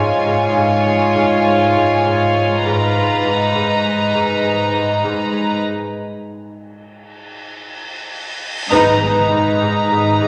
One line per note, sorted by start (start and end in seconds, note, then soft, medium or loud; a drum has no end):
0.00 0.25 G#2 soft
0.00 2.61 G#2 medium
0.00 0.85 G#3 soft
0.00 3.25 F4 soft
0.00 2.65 C#5 soft
0.00 2.61 G#5 soft
0.27 0.55 G#2 soft
0.56 1.14 G#2 medium
0.86 1.44 G#3 soft
1.15 1.75 G#2 medium
1.46 2.34 G#3 soft
1.76 2.04 G#2 soft
2.05 2.64 G#2 medium
2.36 3.84 G#3 soft
2.65 3.21 G#1 soft
2.65 5.58 G#2 soft
2.65 2.94 G#2 soft
2.65 5.59 B4 soft
2.65 5.59 A#5 soft
2.95 3.24 G#2 soft
3.25 3.54 G#2 soft
3.25 5.63 D#4 soft
3.55 4.13 G#2 soft
3.85 4.43 G#3 soft
4.14 4.73 G#2 soft
4.44 5.31 G#3 soft
4.74 5.03 G#2 soft
5.04 5.65 G#2 soft
5.32 6.88 G#3 soft
5.63 cymbal swell soft
8.71 10.28 G#1 soft
8.71 10.28 G#2 medium
8.71 9.30 G#2 soft
8.71 8.99 B3 medium
8.71 10.28 D#4 soft
8.71 8.99 B4 medium
8.71 10.28 B4 soft
8.71 10.28 A#5 soft
8.71 sub drop soft
9.01 10.28 G#3 soft
9.31 9.60 G#2 soft
9.61 9.90 G#2 soft
9.91 10.20 G#2 soft
10.22 10.28 G#2 medium